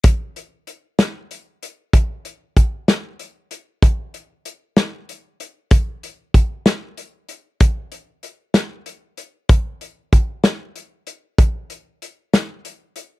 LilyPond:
\new DrumStaff \with { instrumentName = "Drums" } \drummode { \time 6/8 \tempo 4. = 63 <hh bd>8 hh8 hh8 <hh sn>8 hh8 hh8 | <hh bd>8 hh8 <hh bd>8 <hh sn>8 hh8 hh8 | <hh bd>8 hh8 hh8 <hh sn>8 hh8 hh8 | <hh bd>8 hh8 <hh bd>8 <hh sn>8 hh8 hh8 |
<hh bd>8 hh8 hh8 <hh sn>8 hh8 hh8 | <hh bd>8 hh8 <hh bd>8 <hh sn>8 hh8 hh8 | <hh bd>8 hh8 hh8 <hh sn>8 hh8 hh8 | }